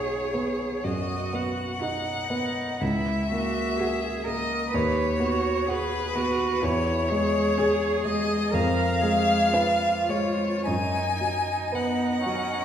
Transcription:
Already playing: B1 B3 D#4 F#4 G#4 C#5
0.34 B3
0.84 F#2 F#4 D#5
1.33 B3 F#5
1.81 D#4 F#4
2.30 B3 D#4
2.81 C#2 E4 E5
3.30 A#3 F#4
3.78 F#4 G#4
4.24 A#3 A#4 D#5
4.71 D#2 B4 C#5
5.20 B3 F#4
5.67 F#4 G#4 B4
6.15 B3 F#4
6.62 E2 E4 C#5
7.08 G#3 G#4
7.58 C#4 G#4
8.05 G#3 D#5
8.52 F2 A#4 F5
9.01 G#3 G#4
9.53 C#4 F4 B4
10.09 G#3 C#5
10.65 F#2 D#4 G#5
11.21 F#3
11.72 B3 B4 F#5
12.25 F#3 C#4

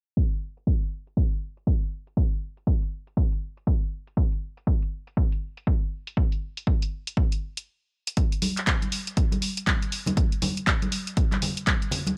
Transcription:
0.17 kick
0.32 closed hi-hat
0.57 closed hi-hat
0.67 kick
0.82 closed hi-hat
1.07 closed hi-hat
1.17 kick
1.32 closed hi-hat
1.57 closed hi-hat
1.67 kick
2.07 closed hi-hat
2.17 kick
2.32 closed hi-hat
2.57 closed hi-hat
2.67 kick
2.82 closed hi-hat
3.07 closed hi-hat
3.17 kick
3.32 closed hi-hat
3.57 closed hi-hat
3.67 kick
4.07 closed hi-hat
4.17 kick
4.32 closed hi-hat
4.57 closed hi-hat
4.67 kick
4.82 closed hi-hat
5.07 closed hi-hat
5.17 kick
5.32 closed hi-hat
5.57 closed hi-hat
5.67 kick
6.07 closed hi-hat
6.17 kick
6.32 closed hi-hat
6.57 closed hi-hat
6.67 kick
6.82 closed hi-hat
7.07 closed hi-hat
7.17 kick
7.32 closed hi-hat
7.57 closed hi-hat
8.07 closed hi-hat
8.17 kick, closed hi-hat
8.32 closed hi-hat
8.42 open hi-hat, high conga
8.57 clap, closed hi-hat
8.67 kick, clap, closed hi-hat
8.82 closed hi-hat, high conga
8.92 open hi-hat
9.07 closed hi-hat
9.17 kick, closed hi-hat
9.32 closed hi-hat, high conga
9.42 open hi-hat
9.57 closed hi-hat
9.67 kick, clap, closed hi-hat, high conga
9.82 closed hi-hat
9.92 open hi-hat
10.06 closed hi-hat, high conga, low conga
10.17 kick, closed hi-hat
10.32 closed hi-hat
10.42 open hi-hat, high conga, low conga
10.57 closed hi-hat
10.67 kick, clap, closed hi-hat
10.82 closed hi-hat, high conga
10.92 open hi-hat
11.07 closed hi-hat
11.17 kick, closed hi-hat
11.32 clap, closed hi-hat, high conga
11.42 open hi-hat, low conga
11.57 closed hi-hat
11.67 kick, clap, closed hi-hat, high conga
11.82 closed hi-hat
11.91 open hi-hat, low conga
12.07 closed hi-hat, high conga

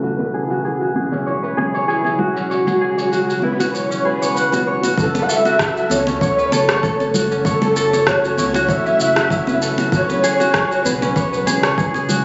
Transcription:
Already playing: C#3 C#4 E4 A4 B4 C#5 F#5
0.03 E1 F#3 G#3 F#4, shaker
0.19 B4, muted conga, shaker
0.34 G#4
0.50 F#4, muted conga, shaker
0.64 G#4, shaker
0.81 F#4, shaker
0.95 G#4, high conga
1.12 C#4, muted conga, shaker
1.26 C#5, shaker
1.43 B4, shaker
1.57 G#4, muted conga
1.74 C#5, shaker
1.88 E4 G#4, shaker
2.04 G#4, muted conga, shaker
2.19 F#4, low conga
2.36 C#4, shaker
2.50 C#5, shaker
2.67 G#4, muted conga, low conga, shaker
2.81 G#4
2.97 C#5, shaker
3.12 F#4, shaker
3.29 F#4, shaker
3.42 E4 B4, high conga
3.60 F#4, muted conga, shaker
3.73 C#5, shaker
3.90 C#4, shaker
4.05 G#4 B4
4.22 C#5, shaker
4.36 F#5, shaker
4.52 F#4, muted conga, high conga, shaker
4.67 C#5
4.83 F#4, muted conga, shaker
4.97 F#1 C#3 F#3 A3 E4 F#4 A4, kick, shaker
5.14 B4, muted conga, shaker
5.22 F#5
5.29 A4 E5, shaker
5.45 F#4, muted conga, shaker
5.59 A4, kick, cross-stick, shaker
5.76 F#4, shaker
5.90 C#2 A4 C#5, high conga, shaker
6.07 C#4, muted conga, shaker
6.21 C#5, kick, shaker
6.38 B4, shaker
6.52 F#1 A4, muted conga, shaker
6.69 C#5, cross-stick, shaker
6.83 A4, kick, shaker
7.00 A4, muted conga, shaker
7.14 F#4, low conga, shaker
7.31 C#4, shaker
7.45 A4 C#5, kick, shaker
7.62 A4, muted conga, low conga, shaker
7.76 A4, shaker
7.93 C#5, muted conga, shaker
8.07 F#4 C#5, kick, cross-stick, shaker
8.24 F#4, shaker
8.38 C#2 E4 C#5, high conga, shaker
8.54 F#4, muted conga, shaker
8.69 E1 C#5 E5, kick, shaker
8.86 C#4, shaker
8.99 F#1 F#5, shaker
9.16 F#4, cross-stick, shaker
9.30 C#4, kick, shaker
9.47 B4, muted conga, high conga, shaker
9.62 A4, shaker
9.78 F#4, muted conga, shaker
9.92 E1 G#3 F#4 C#5, kick, shaker
10.09 B4, muted conga, shaker
10.23 G#4, shaker
10.40 F#4, muted conga, shaker
10.54 G#4, kick, cross-stick, shaker
10.71 F#4, shaker
10.85 B1 G#4 B4, high conga, shaker
11.02 C#4, muted conga, shaker
11.16 C#5, kick, shaker
11.33 B4, shaker
11.47 E1 G#4, muted conga, shaker
11.63 C#5, cross-stick, shaker
11.78 G#4, kick, shaker
11.94 G#4, muted conga, shaker
12.09 F#4, low conga, shaker

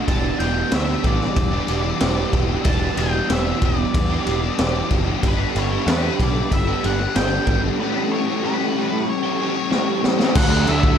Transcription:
Already playing: D4 E6
0.06 E1 E2 B2 E3 G3 B3 G4 A5, kick, ride
0.38 E1 E3 G3 B3 G4 G5, ride
0.54 E3 G3 B3 G4
0.70 D2 E2 B2 E3 G3 B3 G4 E5, snare, ride
1.02 A1 E3 G3 B3 G4, kick, ride
1.07 D5
1.20 muted overdriven electric guitar stroke, snare
1.36 E1, kick, ride
1.51 E3 G3 B3 G4
1.67 E1 E3 G3 B3 G4, ride
1.83 E3 G3 B3 G4, muted overdriven electric guitar stroke
1.99 E1 E2 B2 E3 G3 B3 G4, snare, ride
2.32 E1 E3 G3 B3 G4, kick, ride
2.48 E3 G3 B3 G4
2.63 E1 E2 B2 E3 G3 B3 G4, kick, ride
2.69 A5
2.96 E1 E3 G3 B3 G4 G5, ride
3.12 E3 G3 B3 G4
3.28 E1 E2 B2 E3 G3 B3 G4 E5, snare, ride
3.62 E1 E3 G3 B3 G4 D5, kick, ride
3.78 muted overdriven electric guitar stroke
3.94 E2, kick, ride
4.10 E3 G3 B3 G4
4.25 E1 E3 G3 B3 G4, ride
4.41 E3 G3 B3 G4, muted overdriven electric guitar stroke
4.57 E1 E2 B2 E3 G3 B3 G4, snare, ride
4.90 F#1 E3 G3 B3 G4, kick, ride
5.06 E3 G3 B3 G4
5.22 G1 G2 D3 G3 B3 D4 G4 A4 B5, kick, ride
5.28 B4
5.55 G1 G3 B3 D4 G4 C#5, ride
5.70 G3 B3 D4 G4
5.86 E2 G2 D3 G3 B3 D4 G4, snare, ride
5.91 B4
6.17 B1 G3 B3 D4 G4, kick, ride
6.23 D5
6.37 muted overdriven electric guitar stroke
6.52 G1 E5, kick, ride
6.67 G3 B3 D4 G4
6.84 G1 G3 B3 D4 G4 F#5, ride
6.99 G3 B3 D4 G4, muted overdriven electric guitar stroke
7.15 G1 G2 D3 G3 B3 D4 G4 G5, snare, ride
7.47 G#1 G3 B3 D4, kick, ride
7.51 G4
7.64 G3 B3 D4 G4
7.80 A2 E3 G3 C#4 G4 B4 C#6
8.11 E3 G3 C#4 G4 C#5
8.28 G3 C#4 G4
8.43 A2 E3 G3 C#4 G4 B4
8.76 E3 G3 C#4 G4
8.92 muted overdriven electric guitar stroke
9.09 C#5
9.23 G3 C#4 G4
9.39 E3 G3 C#4 G4
9.55 G3 C#4 G4, muted overdriven electric guitar stroke
9.70 A2 E3 G3 C#4 G4, snare
10.03 E3 G3 C#4 G4, snare
10.18 G3 C#4 G4, snare
10.34 D2 D3 F#3 A3 D4 F#4 A4 F#5 D6, kick, crash
10.66 D2 A3 D4 F#4 E5, crash
10.83 kick

